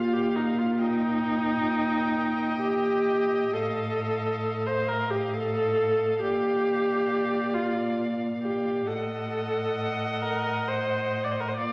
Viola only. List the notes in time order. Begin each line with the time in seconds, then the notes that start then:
Already playing: F4
0.13 G4
0.36 D#4
0.59 F4
0.80 D#4
2.61 G4
3.53 A4
4.67 C5
4.88 A#4
5.11 G4
5.34 A4
6.22 G4
7.54 F4
8.42 G4
8.87 A4
10.22 A#4
10.67 C5
11.24 D5
11.31 C5
11.40 A#4
11.48 C5
11.57 D5